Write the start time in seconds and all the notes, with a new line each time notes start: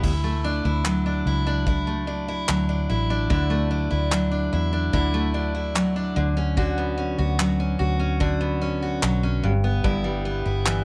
Already playing: G2 E3 G3 B3
0.03 D2 E4, kick, crash
0.24 A3
0.44 D4
0.65 D2 E4
0.85 F#3, clap
1.06 D4
1.26 C#2 E4
1.47 D4
1.67 E4, kick
1.87 A3
2.07 D4
2.28 E4
2.48 D2 F#3, clap
2.69 D4
2.90 A1 E4
3.10 D4
3.30 D2 D3 E4, kick
3.50 A3
3.71 D4
3.91 D2 E4
4.11 F#3, clap
4.31 D4
4.53 E2 E4
4.73 D4
4.93 D2 D3 E4, kick
5.14 A3
5.34 D4
5.55 E4
5.75 F#3, clap
5.96 D4
6.16 D2 D3
6.37 C#4
6.57 D3 F#4, kick
6.78 B3
6.98 C#4
7.18 D2 F#4
7.39 F#3, clap
7.60 C#4
7.79 D2 F#4
8.00 C#4
8.20 D3 F#4, kick
8.41 B3
8.62 C#4
8.82 F#4
9.03 B1 F#3, clap
9.23 C#4
9.44 G1 G2
9.64 B3
9.84 G1 G2 E4, kick
10.04 G3
10.25 B3
10.46 G1 E4
10.66 E3, clap